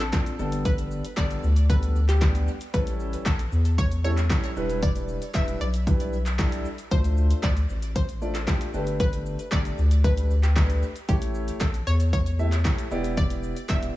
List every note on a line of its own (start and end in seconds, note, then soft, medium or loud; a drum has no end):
0.00 0.18 A1 medium
0.00 0.36 A4 medium
0.00 clap medium
0.00 closed hi-hat medium
0.00 impact medium
0.00 shaker medium
0.13 0.33 F3 medium
0.13 0.33 C4 medium
0.13 0.33 D4 medium
0.13 0.33 A4 medium
0.13 kick loud
0.13 snare medium
0.13 clap loud
0.13 closed hi-hat medium
0.13 shaker medium
0.26 closed hi-hat medium
0.26 shaker medium
0.39 1.02 G1 loud
0.39 1.02 G3 medium
0.39 1.02 B3 medium
0.39 1.02 D4 medium
0.39 1.02 A4 medium
0.39 shaker medium
0.52 closed hi-hat medium
0.52 shaker medium
0.65 1.19 B4 loud
0.65 kick loud
0.65 closed hi-hat medium
0.65 shaker medium
0.78 closed hi-hat medium
0.78 shaker medium
0.91 shaker medium
1.05 closed hi-hat medium
1.05 shaker medium
1.17 1.38 G1 loud
1.17 1.43 G3 medium
1.17 1.44 B3 medium
1.17 1.44 D4 medium
1.17 1.44 A4 medium
1.17 1.71 D5 loud
1.17 kick loud
1.17 snare medium
1.17 clap loud
1.17 closed hi-hat medium
1.17 shaker medium
1.31 closed hi-hat medium
1.31 shaker medium
1.43 2.47 D2 medium
1.43 shaker medium
1.56 closed hi-hat medium
1.56 shaker medium
1.69 1.96 G3 medium
1.69 1.96 B3 medium
1.69 1.96 D4 medium
1.69 1.96 A4 medium
1.69 2.10 B4 loud
1.69 kick loud
1.69 closed hi-hat medium
1.69 shaker medium
1.83 closed hi-hat medium
1.83 shaker medium
1.96 shaker soft
2.09 2.45 G4 medium
2.09 clap medium
2.09 closed hi-hat medium
2.09 shaker medium
2.21 2.48 G3 medium
2.21 2.48 B3 medium
2.21 2.48 D4 medium
2.21 2.48 G4 medium
2.21 kick loud
2.21 snare medium
2.21 clap loud
2.21 closed hi-hat medium
2.21 shaker medium
2.35 closed hi-hat medium
2.35 shaker medium
2.48 shaker medium
2.61 closed hi-hat soft
2.61 shaker medium
2.74 3.16 A1 loud
2.74 3.26 G3 medium
2.74 3.26 C#4 medium
2.74 3.26 E4 medium
2.74 3.26 A4 medium
2.74 3.28 B4 medium
2.74 kick loud
2.74 closed hi-hat medium
2.74 shaker medium
2.87 closed hi-hat medium
2.87 shaker medium
3.00 shaker medium
3.13 closed hi-hat medium
3.13 shaker medium
3.25 3.47 A1 loud
3.25 3.75 A4 medium
3.25 kick loud
3.25 snare medium
3.25 clap loud
3.25 closed hi-hat medium
3.25 shaker medium
3.39 closed hi-hat medium
3.39 shaker medium
3.52 4.35 E2 medium
3.52 shaker medium
3.65 closed hi-hat medium
3.65 shaker medium
3.78 4.02 C#5 loud
3.78 kick loud
3.78 closed hi-hat medium
3.78 shaker medium
3.92 closed hi-hat medium
3.92 shaker medium
4.04 4.17 G3 medium
4.04 4.17 C#4 medium
4.04 4.17 E4 medium
4.04 4.18 A4 medium
4.04 4.53 C#5 loud
4.04 shaker soft
4.17 clap medium
4.17 closed hi-hat medium
4.17 shaker medium
4.30 4.50 G3 medium
4.30 4.50 C#4 medium
4.30 4.50 E4 medium
4.30 4.50 A4 medium
4.30 kick loud
4.30 snare medium
4.30 clap loud
4.30 closed hi-hat medium
4.30 shaker medium
4.44 closed hi-hat medium
4.44 shaker medium
4.56 5.19 E1 loud
4.56 5.19 G3 medium
4.56 5.19 D4 medium
4.56 5.19 E4 medium
4.56 5.19 B4 medium
4.56 shaker medium
4.70 closed hi-hat soft
4.70 shaker medium
4.83 5.36 D5 loud
4.83 kick loud
4.83 closed hi-hat medium
4.83 shaker medium
4.96 closed hi-hat medium
4.96 shaker medium
5.09 shaker medium
5.22 closed hi-hat medium
5.22 shaker medium
5.34 5.56 E1 loud
5.34 5.61 G3 medium
5.34 5.61 D4 medium
5.34 5.61 E4 medium
5.34 5.61 B4 medium
5.34 5.62 E5 loud
5.34 kick loud
5.34 snare medium
5.34 clap loud
5.34 closed hi-hat medium
5.34 shaker medium
5.48 closed hi-hat soft
5.48 shaker medium
5.61 6.65 B1 medium
5.61 6.61 D5 medium
5.61 shaker medium
5.74 closed hi-hat medium
5.74 shaker medium
5.87 6.13 G3 medium
5.87 6.13 D4 medium
5.87 6.13 E4 medium
5.87 6.13 B4 medium
5.87 kick loud
5.87 closed hi-hat medium
5.87 shaker medium
6.00 closed hi-hat medium
6.00 shaker medium
6.13 shaker soft
6.26 clap medium
6.26 closed hi-hat medium
6.26 shaker medium
6.39 6.65 G3 medium
6.39 6.65 D4 medium
6.39 6.65 E4 medium
6.39 6.65 A4 loud
6.39 kick loud
6.39 snare medium
6.39 clap loud
6.39 closed hi-hat medium
6.39 shaker medium
6.52 closed hi-hat medium
6.52 shaker medium
6.65 shaker medium
6.78 closed hi-hat soft
6.78 shaker medium
6.91 7.33 D2 loud
6.91 7.44 A3 medium
6.91 7.44 D4 medium
6.91 7.44 F4 medium
6.91 7.45 C5 loud
6.91 7.44 C5 medium
6.91 kick loud
6.91 closed hi-hat medium
6.91 shaker medium
7.04 closed hi-hat medium
7.04 shaker medium
7.17 shaker medium
7.31 closed hi-hat medium
7.31 shaker medium
7.43 7.64 D2 loud
7.43 7.97 D5 loud
7.43 kick loud
7.43 snare medium
7.43 clap loud
7.43 closed hi-hat medium
7.43 shaker medium
7.57 closed hi-hat medium
7.57 shaker medium
7.70 8.53 A1 medium
7.70 shaker medium
7.82 closed hi-hat medium
7.82 shaker medium
7.96 8.36 C5 loud
7.96 kick loud
7.96 closed hi-hat medium
7.96 shaker medium
8.09 closed hi-hat medium
8.09 shaker medium
8.21 8.35 A3 medium
8.21 8.35 D4 medium
8.21 8.35 F4 medium
8.21 8.35 D5 medium
8.21 shaker soft
8.35 8.71 A4 medium
8.35 clap medium
8.35 closed hi-hat medium
8.35 shaker medium
8.47 8.67 A3 medium
8.47 8.67 D4 medium
8.47 8.67 F4 medium
8.47 8.68 G4 medium
8.47 kick loud
8.47 snare medium
8.47 clap loud
8.47 closed hi-hat medium
8.47 shaker medium
8.61 closed hi-hat medium
8.61 shaker medium
8.74 9.36 G1 loud
8.74 9.36 A3 medium
8.74 9.36 D4 medium
8.74 9.37 G4 medium
8.74 9.37 B4 medium
8.74 shaker medium
8.87 closed hi-hat medium
8.87 shaker medium
9.00 9.54 B4 loud
9.00 kick loud
9.00 closed hi-hat medium
9.00 shaker medium
9.13 closed hi-hat medium
9.13 shaker medium
9.26 shaker medium
9.39 closed hi-hat medium
9.39 shaker medium
9.51 9.73 G1 loud
9.51 9.78 A3 medium
9.51 9.78 D4 medium
9.51 9.78 G4 medium
9.51 10.06 D5 loud
9.51 9.78 D5 medium
9.51 kick loud
9.51 snare medium
9.51 clap loud
9.51 closed hi-hat medium
9.51 shaker medium
9.65 closed hi-hat medium
9.65 shaker medium
9.78 10.82 D2 medium
9.78 shaker medium
9.91 closed hi-hat medium
9.91 shaker medium
10.04 10.30 A3 medium
10.04 10.30 D4 medium
10.04 10.30 G4 medium
10.04 10.45 B4 loud
10.04 10.31 B4 medium
10.04 kick loud
10.04 closed hi-hat medium
10.04 shaker medium
10.17 closed hi-hat medium
10.17 shaker medium
10.31 shaker soft
10.43 10.80 G4 medium
10.43 clap medium
10.43 closed hi-hat medium
10.43 shaker medium
10.56 10.83 A3 medium
10.56 10.83 D4 medium
10.56 10.83 G4 medium
10.56 10.83 B4 medium
10.56 kick loud
10.56 snare medium
10.56 clap loud
10.56 closed hi-hat medium
10.56 shaker medium
10.70 closed hi-hat medium
10.70 shaker soft
10.83 shaker medium
10.96 closed hi-hat soft
10.96 shaker medium
11.08 11.50 A1 loud
11.08 11.61 A3 medium
11.08 11.61 E4 medium
11.08 11.62 G4 medium
11.08 11.61 G4 medium
11.08 11.61 C#5 loud
11.08 kick loud
11.08 closed hi-hat medium
11.08 shaker medium
11.22 closed hi-hat medium
11.22 shaker medium
11.35 shaker medium
11.48 closed hi-hat medium
11.48 shaker medium
11.60 11.82 A1 loud
11.60 11.88 A4 loud
11.60 kick loud
11.60 snare medium
11.60 clap loud
11.60 closed hi-hat medium
11.60 shaker medium
11.74 closed hi-hat medium
11.74 shaker medium
11.87 12.70 E2 loud
11.87 12.12 C#5 loud
11.87 shaker medium
12.00 closed hi-hat medium
12.00 shaker medium
12.13 12.87 C#5 loud
12.13 kick loud
12.13 closed hi-hat medium
12.13 shaker medium
12.26 closed hi-hat medium
12.26 shaker medium
12.39 12.52 A3 medium
12.39 12.52 E4 medium
12.39 12.52 G4 medium
12.39 12.52 E5 medium
12.39 shaker soft
12.52 clap medium
12.52 closed hi-hat medium
12.52 shaker medium
12.65 12.85 A3 medium
12.65 12.85 E4 medium
12.65 12.85 G4 medium
12.65 12.85 C#5 medium
12.65 kick loud
12.65 snare medium
12.65 clap loud
12.65 closed hi-hat medium
12.65 shaker medium
12.78 closed hi-hat medium
12.78 shaker medium
12.91 13.54 E1 loud
12.91 13.54 B3 medium
12.91 13.54 E4 medium
12.91 13.54 G4 medium
12.91 13.54 D5 loud
12.91 shaker medium
13.04 closed hi-hat soft
13.04 shaker medium
13.17 13.71 D5 loud
13.17 kick loud
13.17 closed hi-hat medium
13.17 shaker medium
13.30 closed hi-hat medium
13.30 shaker medium
13.43 shaker medium
13.57 closed hi-hat medium
13.57 shaker medium
13.69 13.90 E1 loud
13.69 13.96 B3 medium
13.69 13.96 E4 medium
13.69 13.96 G4 medium
13.69 13.96 D5 medium
13.69 13.96 E5 loud
13.69 kick loud
13.69 snare medium
13.69 clap loud
13.69 closed hi-hat medium
13.69 shaker medium
13.83 closed hi-hat medium
13.83 shaker medium